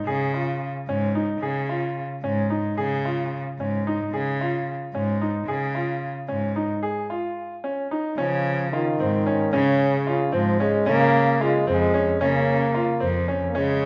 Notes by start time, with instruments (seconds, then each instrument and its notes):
0.05 cello C#3, grand piano G#4
0.34 grand piano F4
0.88 cello G#2, grand piano C#4
1.15 grand piano D#4
1.41 cello C#3, grand piano G#4
1.69 grand piano F4
2.23 cello G#2, grand piano C#4
2.50 grand piano D#4
2.78 cello C#3, grand piano G#4
3.05 grand piano F4
3.59 cello G#2, grand piano C#4
3.87 grand piano D#4
4.13 cello C#3, grand piano G#4
4.41 grand piano F4
4.94 cello G#2, grand piano C#4
5.21 grand piano D#4
5.47 cello C#3, grand piano G#4
5.75 grand piano F4
6.28 cello G#2, grand piano C#4
6.56 grand piano D#4
6.83 grand piano G#4
7.10 grand piano F4
7.64 grand piano C#4
7.91 grand piano D#4
8.18 cello C#3, french horn F3, grand piano C#4
8.72 french horn D#3, grand piano F4
8.99 cello G#2, grand piano C4
9.26 grand piano C#4
9.53 cello C#3, french horn C#3, grand piano C#4
10.07 grand piano F4
10.32 cello G#2, french horn F3, grand piano C4
10.60 french horn G#3, grand piano C#4
10.86 cello C#3, french horn A#3, grand piano C#4
11.41 french horn G#3, grand piano F4
11.67 cello F2, french horn G#3, grand piano C4
11.94 grand piano C#4
12.21 cello C#3, french horn A#3, grand piano C#4
12.75 grand piano F4
13.00 cello F2, grand piano C4
13.28 grand piano C#4
13.48 french horn A#3
13.55 cello C#3, french horn G#3, grand piano C#4